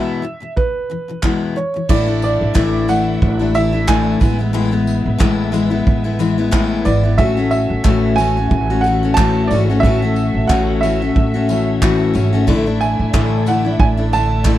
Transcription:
Already playing: steel-string acoustic guitar E2 B2 E3 G#3 B3 E4, upright piano E5
0.22 steel-string acoustic guitar E2 B2 E3
0.40 steel-string acoustic guitar E2 B2 E3
0.56 upright piano B4, kick
0.90 steel-string acoustic guitar E2 B2 E3
1.08 steel-string acoustic guitar E2 B2 E3
1.23 steel-string acoustic guitar E2 B2 E3 G#3 B3 E4, kick, clap
1.56 steel-string acoustic guitar E2 B2 E3, upright piano C#5
1.74 steel-string acoustic guitar E2 B2 E3
1.89 upright bass A1, steel-string acoustic guitar A2 E3 A3 D4 E4, string section A3 E4 D5 E5, upright piano D5, kick, crash
2.06 steel-string acoustic guitar A3 D4 E4
2.22 upright piano D5, tambourine
2.41 upright bass A1
2.54 upright bass A1, steel-string acoustic guitar A2 E3 A3 D4 E4, kick, clap
2.88 steel-string acoustic guitar E3 A3 D4 E4, upright piano F#5, tambourine
3.22 upright bass A1, kick
3.39 steel-string acoustic guitar A3 D4 E4
3.54 steel-string acoustic guitar E3 A3 D4 E4, upright piano E5, tambourine
3.73 steel-string acoustic guitar A3 D4 E4
3.87 steel-string acoustic guitar A2 E3 A3 D4 E4, upright piano G#5, kick, clap
4.20 upright bass A1, steel-string acoustic guitar E3 G#3 B3 E4, string section G#3 B4 E5, kick, tambourine
4.39 steel-string acoustic guitar G#3 B3 E4
4.53 steel-string acoustic guitar A2 E3 G#3 B3 E4
4.71 steel-string acoustic guitar G#3 B3 E4
4.87 tambourine
5.06 upright bass A1
5.18 upright bass A1, steel-string acoustic guitar A2 E3 G#3 B3 E4, kick, clap
5.52 steel-string acoustic guitar E3 G#3 B3 E4, tambourine
5.70 steel-string acoustic guitar G#3 B3 E4
5.87 upright bass A1, kick
6.04 steel-string acoustic guitar G#3 B3 E4
6.19 steel-string acoustic guitar E3 G#3 B3 E4, tambourine
6.38 steel-string acoustic guitar G#3 B3 E4
6.51 steel-string acoustic guitar A2 E3 G#3 B3 E4, kick, clap
6.85 upright bass G#1, steel-string acoustic guitar E3 G#3 B3 E4, upright piano D5, tambourine
7.03 steel-string acoustic guitar G#3 B3 E4
7.18 upright bass A1, steel-string acoustic guitar A2 E3 A3 C#4 F#4, string section A3 F#4 A4 E5, upright piano E5, kick
7.37 steel-string acoustic guitar A3 C#4 F#4
7.51 upright piano E5, tambourine
7.70 upright bass A1
7.85 upright bass A1, steel-string acoustic guitar A2 E3 A3 C#4 F#4, kick, clap
8.16 steel-string acoustic guitar E3 A3, upright piano G#5, tambourine
8.20 steel-string acoustic guitar C#4 F#4
8.37 steel-string acoustic guitar A3 C#4 F#4
8.51 upright bass A1, kick
8.70 steel-string acoustic guitar A3 C#4 F#4
8.81 steel-string acoustic guitar E3, upright piano F#5, tambourine
8.86 steel-string acoustic guitar A3 C#4 F#4
9.03 steel-string acoustic guitar A3 C#4 F#4
9.14 upright piano A5, kick, clap
9.18 steel-string acoustic guitar A2 E3 A3 C#4 F#4
9.47 upright bass G#1, steel-string acoustic guitar E3, upright piano D5, tambourine
9.52 steel-string acoustic guitar A3 C#4 F#4
9.69 steel-string acoustic guitar A3 C#4 F#4
9.80 upright bass A1, upright piano E5, kick
9.84 steel-string acoustic guitar A2 E3 A3 C#4 F#4
10.02 steel-string acoustic guitar A3 C#4 F#4
10.16 tambourine
10.34 upright bass A1
10.47 upright bass A1, steel-string acoustic guitar A2 E3 A3 C#4, upright piano F#5, kick, clap
10.52 steel-string acoustic guitar F#4
10.81 steel-string acoustic guitar E3 A3 C#4, upright piano E5, tambourine
10.85 steel-string acoustic guitar F#4
11.02 steel-string acoustic guitar A3 C#4 F#4
11.16 upright bass A1, kick
11.34 steel-string acoustic guitar A3 C#4 F#4
11.49 steel-string acoustic guitar E3 A3 C#4 F#4, tambourine
11.82 steel-string acoustic guitar A2 E3 A3 C#4 F#4, kick, clap
12.14 upright bass G#1, steel-string acoustic guitar E3 A3 C#4 F#4, tambourine
12.33 steel-string acoustic guitar A3 C#4 F#4
12.47 upright bass A1, steel-string acoustic guitar A2 D3 A3 D4 E4, string section E4 D5, kick
12.66 steel-string acoustic guitar A3 D4 E4
12.81 upright piano G#5, tambourine
12.99 upright bass A1
13.13 upright bass A1, steel-string acoustic guitar A2 D3 A3 D4 E4, kick, clap
13.46 steel-string acoustic guitar D3 A3 D4 E4, upright piano F#5, tambourine
13.64 steel-string acoustic guitar A3 D4 E4
13.80 upright bass A1, upright piano G#5, kick
13.97 steel-string acoustic guitar A3 D4 E4
14.13 steel-string acoustic guitar D3 A3 D4 E4, upright piano A5, tambourine
14.45 steel-string acoustic guitar A2 D3 A3 D4 E4, kick, clap

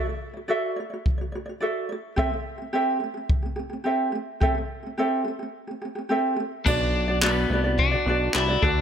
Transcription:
0.05 ukulele F#4 D5
0.34 ukulele F#4 D5
0.48 ukulele F#4 A4 D5 E5
0.76 ukulele F#4 D5
0.90 ukulele F#4 D5
1.06 kick
1.18 ukulele F#4 D5
1.32 ukulele F#4 D5
1.46 ukulele F#4 D5
1.60 ukulele F#4 A4 D5 E5
1.89 ukulele F#4 D5
2.16 ukulele C4 G4 A4 E5, kick
2.30 ukulele C4 G4
2.58 ukulele C4 G4
2.73 ukulele C4 G4 A4 E5
3.00 ukulele C4 G4
3.14 ukulele C4 G4
3.30 kick
3.42 ukulele C4 G4
3.56 ukulele C4 G4
3.70 ukulele C4 G4
3.84 ukulele C4 G4 A4 E5
4.12 ukulele C4 G4
4.40 ukulele C4 G4 A4 E5, kick
4.55 ukulele C4 G4
4.83 ukulele C4 G4
4.98 ukulele C4 G4 A4 E5
5.24 ukulele C4 G4
5.39 ukulele C4 G4
5.67 ukulele C4 G4
5.82 ukulele C4 G4
5.95 ukulele C4 G4
6.09 ukulele C4 G4 A4 E5
6.36 ukulele C4 G4
6.66 analog synth bass B1, clean electric guitar D4, ukulele D4 F#4 B4 D5, kick, crash
7.08 ukulele D4 F#4 D5
7.22 clean electric guitar B3, ukulele D4 F#4 B4 D5, clap
7.50 analog synth bass C2, ukulele D4 F#4 B4 D5
7.64 ukulele D4 F#4 D5
7.79 clean electric guitar D4, kick
7.91 ukulele D4 F#4 D5
8.06 analog synth bass B1, ukulele D4 F#4 B4 D5
8.34 analog synth bass C2, ukulele D4 F#4 B4 D5, clean electric guitar E4, clap
8.48 ukulele D4 F#4 D5
8.62 analog synth bass D2, clean electric guitar D4, ukulele D4 F#4 A4 D5, kick

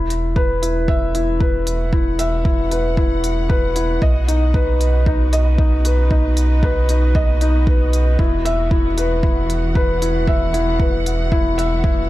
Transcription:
Already playing: analog synth bass E1, string section E3, felt piano E4
0.10 closed hi-hat
0.22 string section B3
0.36 felt piano B4, kick
0.62 felt piano E4, closed hi-hat
0.88 felt piano E5, kick
1.13 felt piano E4, string section F#4, closed hi-hat
1.40 felt piano B4, kick
1.67 closed hi-hat
1.73 string section F#5
1.93 felt piano E4, kick
2.19 felt piano E5, closed hi-hat
2.45 felt piano E4, kick
2.71 felt piano B4, closed hi-hat
2.97 felt piano E4, kick
3.24 closed hi-hat
3.49 felt piano B4, kick
3.76 felt piano E4, closed hi-hat
4.02 analog synth bass B1, felt piano D#5, kick
4.24 felt piano D#4, string section B4
4.29 closed hi-hat
4.54 felt piano B4, kick
4.81 closed hi-hat
5.06 felt piano D#4, kick
5.33 felt piano D#5, closed hi-hat
5.42 string section D#5
5.58 felt piano D#4, kick
5.85 felt piano B4, closed hi-hat
6.11 felt piano D#4, kick
6.37 closed hi-hat
6.63 felt piano B4, kick
6.89 felt piano D#4, closed hi-hat
7.15 felt piano D#5, kick
7.41 felt piano D#4, closed hi-hat
7.67 felt piano B4, kick
7.93 closed hi-hat
8.19 analog synth bass E1, string section E3, felt piano E4, kick
8.45 felt piano E5, closed hi-hat
8.60 string section F#5
8.71 felt piano E4, kick
8.98 felt piano B4, closed hi-hat
9.23 felt piano E4, kick
9.50 closed hi-hat
9.75 felt piano B4, kick
10.02 felt piano E4, closed hi-hat
10.27 felt piano E5, kick
10.54 felt piano E4, closed hi-hat
10.80 felt piano B4, kick
11.06 closed hi-hat
11.32 felt piano E4, kick
11.58 felt piano E5, closed hi-hat
11.84 felt piano E4, kick

